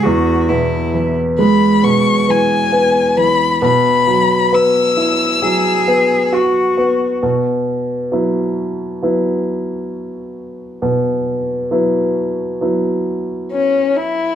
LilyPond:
<<
  \new Staff \with { instrumentName = "Violin" } { \time 4/4 \key b \mixolydian \tempo 4 = 67 r4. b''8 cis'''8 gis''4 b''8 | b''4 e'''2 r4 | r1 | r2. cis'8 e'8 | }
  \new Staff \with { instrumentName = "Cello" } { \time 4/4 \key b \mixolydian fis'8 e'8. r2 r8. | r2 gis'4 fis'4 | r1 | r1 | }
  \new Staff \with { instrumentName = "Grand piano" } { \clef bass \time 4/4 \key b \mixolydian e,8 b,8 e8 gis8 b,8 e8 b8 e8 | b,8 fis8 b8 e'8 fis8 b8 fis'8 b8 | b,4 <fis b e'>4 <fis b e'>4 r4 | b,4 <fis b e'>4 <fis b e'>4 r4 | }
>>